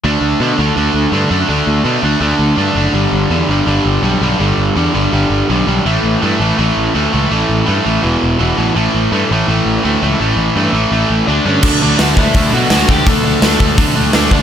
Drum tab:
CC |--------|--------|--------|--------|
HH |--------|--------|--------|--------|
SD |--------|--------|--------|--------|
BD |--------|--------|--------|--------|

CC |--------|--------|--------|--------|
HH |--------|--------|--------|--------|
SD |--------|--------|--------|--------|
BD |--------|--------|--------|--------|

CC |x-------|--------|
HH |--o-o-o-|o-o-o-o-|
SD |--o---o-|--o---o-|
BD |o--oo--o|o--oo--o|